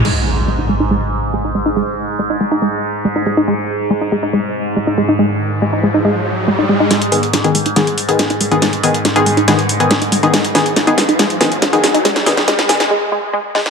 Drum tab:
CC |x---------------|----------------|----------------|----------------|
HH |----------------|----------------|----------------|----------------|
SD |----------------|----------------|----------------|----------------|

CC |----------------|----------------|----------------|----------------|
HH |xxoxxxoxxxoxxxox|xxoxxxoxxxoxxxox|xxoxxxoxxxoxxxox|xxoxxxox--------|
SD |o---o---o---o---|o---o---o---o---|o-o-o-o-o-o-o-o-|oooooooo------oo|